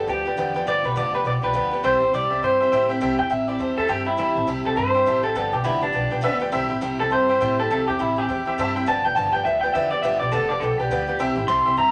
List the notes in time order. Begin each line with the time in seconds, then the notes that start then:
0.07 D2 F3 B3 F4 G4 B4 D5 G5
0.25 F3 B3 F4 G4 B4 D5 G5
0.37 E2 G2 D3 F3 B3 F4 G4 B4 D5 G5
0.54 F3 B3 F4 G4 B4 D5 G5
0.66 G1 G2 D3 F3 B3 F4 G4 B4 D5 G5
0.84 B1 F3 B3 F4 G4 B4 D5 G5
0.95 F1 G2 D3 F3 B3 F4 G4 B4 D5 A5
1.14 F3 B3 F4 G4 B4 D5 G5
1.24 B1 F3 B3 F4 G4 B4 D5 G5
1.42 B1 F3 B3 F4 G4 B4 D5 G5
1.53 D2 G2 D3 F3 B3 F4 G4 B4 D5 G5
1.71 F3 B3 F4 G4 B4 D5 G5
1.83 C2 C3 G3 C4 E4 G4 C5 E5 G5
2.00 A1 C4 E4 G4 C5 E5 G5
2.12 C2 C3 G3 C4 E4 G4 C5 D5 E5 G5
2.30 C2 C4 E4 G4 C5 E5 G5
2.42 G2 G3 C4 E4 G4 C5 E5 G5
2.60 C4 E4 G4 C5 E5 G5
2.72 A2 C3 G3 C4 E4 G4 C5 E5 G5
2.89 C4 E4 G4 C5 E5 G5
3.00 C2 C3 G3 C4 E4 G4 C5 E5 G5
3.18 E2 E4 G4 C5 E5 G5
3.30 A1 C3 G3 C4 E4 G4 C5 E5 G5
3.48 C4 E4 G4 C5 D5 E5 G5
3.59 E2 G3 C4 E4 G4 C5 E5 A5
3.77 E2 C4 E4 G4 A4 C5 E5 A5
3.88 G2 C3 G3 C4 E4 G4 C5 E5 G5
4.05 C4 E4 G4 C5 E5 G5
4.17 E2 C3 G3 C4 E4 G4 C5 E5 G5
4.35 A1 C4 E4 G4 C5 E5 A5
4.47 C2 C3 G3 C4 E4 G4 C5 E5 A5
4.63 C2 C4 E4 G4 A4 C5 E5 G5
4.76 G2 G3 C4 E4 G4 C5 E5 A5
4.95 C4 E4 G4 C5 E5 G5
5.06 A1 C3 G3 C4 E4 G4 C5 E5 A5
5.23 C4 E4 G4 A4 C5 E5 G5
5.35 G1 G2 D3 F3 B3 F4 G4 A4 B4 D5 G5
5.52 B1 F3 B3 F4 G4 B4 D5 G5
5.64 F1 G2 D3 F3 B3 E4 F4 G4 B4 D5 G5
5.81 F3 B3 D4 F4 G4 B4 D5 A5
5.93 B1 F3 B3 F4 G4 B4 D5 G5
6.10 B1 F3 B3 F4 G4 B4 D5 G5
6.21 D2 G2 D3 F3 B3 F4 G4 B4 D5 E5
6.40 F3 B3 F4 G4 B4 D5 G5
6.52 C2 C3 G3 C4 E4 G4 C5 E5 G5
6.69 A1 C4 E4 G4 C5 E5 G5
6.81 C2 C3 G3 C4 E4 G4 C5 E5 G5
6.99 C2 C4 E4 G4 A4 C5 E5 G5
7.10 G2 G3 C4 E4 G4 C5 E5 G5
7.28 C4 E4 G4 C5 E5 G5
7.40 A2 C3 G3 C4 E4 G4 C5 E5 G5
7.59 C4 E4 G4 A4 C5 E5 G5
7.70 C2 C3 G3 C4 E4 G4 A4 C5 E5 G5
7.88 E2 C4 E4 G4 C5 E5 G5
7.99 A1 C3 G3 C4 E4 G4 C5 E5 G5
8.16 C4 E4 G4 C5 E5 A5
8.29 E2 G3 C4 E4 G4 C5 E5 G5
8.45 E2 C4 E4 G4 C5 E5 G5
8.58 G2 C3 G3 C4 E4 G4 C5 E5 A5
8.75 C4 E4 G4 C5 E5 G5
8.86 G1 G2 D3 F3 B3 F4 G4 B4 D5 G5 A5
9.04 F1 F3 B3 F4 G4 B4 D5 G5
9.15 G1 G2 D3 F3 B3 F4 G4 B4 D5 G5 A5
9.32 G1 F3 B3 F4 G4 B4 D5 G5
9.45 D2 F3 B3 F4 G4 B4 D5 E5 G5
9.61 B3 F4 G4 B4 D5 G5
9.65 F3
9.74 E2 G2 D3 F3 B3 F4 G4 B4 D5 E5 G5
9.90 F3 B3 F4 G4 B4 D5 G5
10.02 G1 G2 D3 F3 B3 F4 G4 B4 D5 E5 G5
10.20 B1 F3 B3 F4 G4 B4 D5 G5
10.32 F1 G2 D3 F3 B3 F4 G4 A4 B4 D5 A5
10.49 F3 B3 F4 G4 B4 D5 F5
10.60 B1 F3 B3 F4 G4 A4 B4 D5 G5
10.78 B1 B3 F4 G4 B4 D5 G5
10.82 F3
10.90 D2 G2 D3 F3 B3 F4 G4 B4 D5 G5
11.07 F3 B3 F4 G4 B4 D5 G5
11.18 C2 C3 G3 C4 E4 G4 C5 E5 G5
11.35 A1 C4 E4 G4 C5 E5 G5
11.48 C2 C3 G3 C4 E4 G4 C5 E5 G5 C6
11.65 C2 C4 E4 G4 C5 E5 G5
11.77 G2 G3 C4 E4 G4 C5 E5 A5 A#5